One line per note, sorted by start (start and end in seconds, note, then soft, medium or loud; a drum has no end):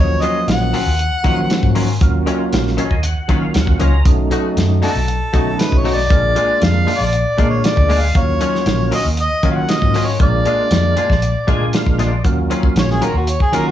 0.00 0.20 D#2 medium
0.00 0.81 F3 medium
0.00 0.80 F#3 medium
0.00 0.81 A#3 medium
0.00 0.81 C#4 medium
0.00 0.24 C#5 loud
0.22 0.38 D#3 medium
0.22 0.38 F#3 medium
0.22 0.38 C#4 medium
0.22 0.39 F4 medium
0.22 0.48 D#5 medium
0.22 closed hi-hat medium
0.47 0.70 A#1 medium
0.47 1.98 F#5 medium
0.47 snare loud
0.47 closed hi-hat medium
0.73 0.89 D#3 medium
0.73 0.89 F#3 medium
0.73 0.89 C#4 medium
0.73 0.90 F4 medium
0.73 open hi-hat medium
0.86 1.09 D#2 medium
0.99 closed hi-hat medium
1.23 1.40 D#3 medium
1.23 1.47 D#3 medium
1.23 1.88 F3 medium
1.23 1.87 F#3 medium
1.23 1.40 F#3 medium
1.23 1.87 A#3 medium
1.23 1.88 C#4 medium
1.23 1.40 C#4 medium
1.23 1.41 F4 medium
1.23 kick medium
1.23 closed hi-hat medium
1.50 snare loud
1.50 closed hi-hat medium
1.63 1.97 G#2 medium
1.63 kick medium
1.75 1.91 D#3 medium
1.75 1.91 F#3 medium
1.75 1.92 C#4 medium
1.75 1.92 F4 medium
1.75 open hi-hat medium
2.01 2.24 D#2 medium
2.01 2.85 F#3 medium
2.01 2.85 A#3 medium
2.01 2.86 C#4 medium
2.01 2.86 F4 medium
2.01 kick loud
2.01 closed hi-hat medium
2.26 2.42 D#3 medium
2.26 2.43 F#3 medium
2.26 2.43 C#4 medium
2.26 2.43 F4 medium
2.26 closed hi-hat medium
2.52 2.75 A#1 medium
2.52 snare loud
2.52 closed hi-hat medium
2.67 snare soft
2.77 2.93 D#3 medium
2.77 2.94 F#3 medium
2.77 2.94 C#4 medium
2.77 2.94 F4 medium
2.77 2.90 C#5 medium
2.77 closed hi-hat medium
2.90 3.13 D#2 medium
2.90 3.03 D#5 medium
2.90 kick medium
3.03 3.40 F#5 medium
3.03 closed hi-hat medium
3.28 3.44 D#3 medium
3.28 3.52 D#3 medium
3.28 3.91 F#3 medium
3.28 3.45 F#3 medium
3.28 3.92 A#3 medium
3.28 3.92 C#4 medium
3.28 3.45 C#4 medium
3.28 3.92 F4 medium
3.28 3.45 F4 medium
3.28 kick medium
3.28 closed hi-hat medium
3.42 3.54 F5 medium
3.54 3.78 D#2 medium
3.54 3.79 F#5 medium
3.54 snare medium
3.54 closed hi-hat medium
3.67 kick medium
3.79 4.03 C#2 medium
3.79 3.95 D#3 medium
3.79 3.96 F#3 medium
3.79 3.96 C#4 medium
3.79 3.96 F4 medium
3.79 4.04 A#5 medium
3.79 closed hi-hat medium
4.05 4.28 B1 medium
4.05 4.89 F#3 medium
4.05 4.89 A3 medium
4.05 4.90 C#4 medium
4.05 4.90 D#4 medium
4.05 kick loud
4.05 closed hi-hat medium
4.31 4.47 B2 medium
4.31 4.47 A3 medium
4.31 4.47 D#4 medium
4.31 4.48 F#4 medium
4.31 closed hi-hat medium
4.57 4.80 F#2 medium
4.57 snare medium
4.57 closed hi-hat medium
4.82 4.98 B2 medium
4.82 4.98 A3 medium
4.82 4.91 D4 medium
4.82 4.98 D#4 medium
4.82 4.99 F#4 medium
4.82 4.91 F#4 medium
4.82 5.62 A4 medium
4.82 open hi-hat medium
4.95 5.18 B1 medium
5.08 closed hi-hat medium
5.33 5.49 B2 medium
5.33 5.56 B2 medium
5.33 5.96 F#3 medium
5.33 5.97 A3 medium
5.33 5.49 A3 medium
5.33 5.97 C#4 medium
5.33 5.50 D#4 medium
5.33 5.97 D#4 medium
5.33 5.50 F#4 medium
5.33 kick medium
5.33 closed hi-hat medium
5.59 5.79 B4 medium
5.59 snare loud
5.59 closed hi-hat medium
5.72 6.06 B1 medium
5.72 kick medium
5.78 5.96 C#5 medium
5.84 6.00 B2 medium
5.84 6.01 A3 medium
5.84 6.01 D#4 medium
5.84 6.01 F#4 medium
5.84 open hi-hat medium
5.94 6.65 D5 medium
6.09 6.33 A#1 medium
6.09 6.94 G#3 medium
6.09 6.94 A#3 medium
6.09 6.94 D4 medium
6.09 6.95 F4 medium
6.09 kick loud
6.09 closed hi-hat medium
6.36 6.51 A#2 medium
6.36 6.52 G#3 medium
6.36 6.52 D4 medium
6.36 6.52 F4 medium
6.36 closed hi-hat medium
6.62 6.85 F2 medium
6.62 6.99 F5 medium
6.62 snare loud
6.62 closed hi-hat medium
6.87 7.03 A#2 medium
6.87 7.03 G#3 medium
6.87 7.03 D4 medium
6.87 7.03 F4 medium
6.87 open hi-hat medium
6.98 7.23 A#1 medium
6.98 7.48 D5 medium
7.13 closed hi-hat medium
7.38 7.54 A#2 medium
7.38 7.61 A#2 medium
7.38 8.01 G#3 medium
7.38 7.54 G#3 medium
7.38 8.01 A#3 medium
7.38 7.54 D4 medium
7.38 8.02 D4 medium
7.38 8.02 F4 medium
7.38 7.55 F4 medium
7.38 kick medium
7.38 closed hi-hat medium
7.50 7.67 C#5 medium
7.64 8.02 D5 medium
7.64 snare loud
7.64 closed hi-hat medium
7.77 8.11 D2 medium
7.77 kick medium
7.89 8.05 A#2 medium
7.89 8.05 G#3 medium
7.89 8.05 D4 medium
7.89 8.06 F4 medium
7.89 open hi-hat medium
8.00 8.18 F5 medium
8.14 8.38 D#2 medium
8.14 8.99 F#3 medium
8.14 8.99 A#3 medium
8.14 8.99 C#4 medium
8.14 8.99 F4 medium
8.14 8.93 C#5 loud
8.14 kick loud
8.14 closed hi-hat medium
8.41 8.56 D#3 medium
8.41 8.57 F#3 medium
8.41 8.57 C#4 medium
8.41 8.57 F4 medium
8.41 closed hi-hat medium
8.55 snare soft
8.66 8.89 A#1 medium
8.66 snare loud
8.66 closed hi-hat medium
8.91 9.07 D#3 medium
8.91 9.08 F#3 medium
8.91 9.08 C#4 medium
8.91 9.08 F4 medium
8.91 9.05 D#5 medium
8.91 open hi-hat medium
9.05 9.28 D#2 medium
9.17 9.47 D#5 loud
9.17 closed hi-hat medium
9.43 9.66 D#3 medium
9.43 9.59 D#3 medium
9.43 10.06 F#3 medium
9.43 9.59 F#3 medium
9.43 10.07 A#3 medium
9.43 10.07 C#4 medium
9.43 9.59 C#4 medium
9.43 10.07 F4 medium
9.43 9.60 F4 medium
9.43 kick medium
9.43 closed hi-hat medium
9.51 9.56 F5 medium
9.55 9.73 F#5 medium
9.69 10.07 D#5 medium
9.69 snare loud
9.69 closed hi-hat medium
9.82 10.16 G#2 medium
9.82 kick medium
9.94 10.10 D#3 medium
9.94 10.10 F#3 medium
9.94 10.11 C#4 medium
9.94 10.11 F4 medium
9.94 open hi-hat medium
10.05 10.21 C#5 medium
10.20 10.43 A#1 medium
10.20 11.04 G#3 medium
10.20 11.04 A#3 medium
10.20 11.04 D4 medium
10.20 11.05 F4 medium
10.20 11.70 D5 loud
10.20 kick loud
10.20 closed hi-hat medium
10.45 10.61 A#2 medium
10.45 10.62 G#3 medium
10.45 10.62 D4 medium
10.45 10.62 F4 medium
10.45 closed hi-hat medium
10.71 10.94 F2 medium
10.71 snare loud
10.71 closed hi-hat medium
10.97 11.12 A#2 medium
10.97 11.13 G#3 medium
10.97 11.13 D4 medium
10.97 11.13 F4 medium
10.97 closed hi-hat medium
11.10 11.33 A#1 medium
11.10 kick medium
11.10 snare soft
11.22 closed hi-hat medium
11.47 11.63 A#2 medium
11.47 11.71 A#2 medium
11.47 12.11 G#3 medium
11.47 11.64 G#3 medium
11.47 12.11 A#3 medium
11.47 11.64 D4 medium
11.47 12.12 D4 medium
11.47 11.64 F4 medium
11.47 12.12 F4 medium
11.47 11.72 G#5 medium
11.47 kick medium
11.47 closed hi-hat medium
11.73 11.98 F5 medium
11.73 snare loud
11.73 closed hi-hat medium
11.86 12.21 A#1 medium
11.86 kick medium
11.99 12.14 A#2 medium
11.99 12.15 G#3 medium
11.99 12.15 D4 medium
11.99 12.15 F4 medium
11.99 12.23 D5 medium
11.99 snare soft
11.99 closed hi-hat medium
12.24 12.47 D#2 medium
12.24 13.08 F#3 medium
12.24 13.08 A#3 medium
12.24 13.09 C#4 medium
12.24 13.09 F4 medium
12.24 kick medium
12.24 closed hi-hat medium
12.50 12.66 D#3 medium
12.50 12.66 F#3 medium
12.50 12.66 C#4 medium
12.50 12.67 F4 medium
12.50 closed hi-hat medium
12.63 kick medium
12.76 12.99 A#1 medium
12.76 12.90 C#5 medium
12.76 snare loud
12.76 closed hi-hat medium
12.91 13.05 G#4 medium
12.91 snare soft
13.01 13.17 D#3 medium
13.01 13.17 F#3 medium
13.01 13.18 C#4 medium
13.01 13.18 F4 medium
13.01 13.18 A#4 medium
13.01 closed hi-hat medium
13.14 13.37 D#2 medium
13.14 13.31 F#4 medium
13.27 13.41 C#5 medium
13.27 closed hi-hat medium
13.40 13.57 G#4 medium
13.40 kick medium
13.52 13.71 D#3 medium
13.52 13.68 D#3 medium
13.52 13.71 F#3 medium
13.52 13.69 F#3 medium
13.52 13.71 A#3 medium
13.52 13.71 C#4 medium
13.52 13.69 C#4 medium
13.52 13.71 F4 medium
13.52 13.69 F4 medium
13.52 13.70 A#4 medium
13.52 closed hi-hat medium
13.68 13.71 F#4 medium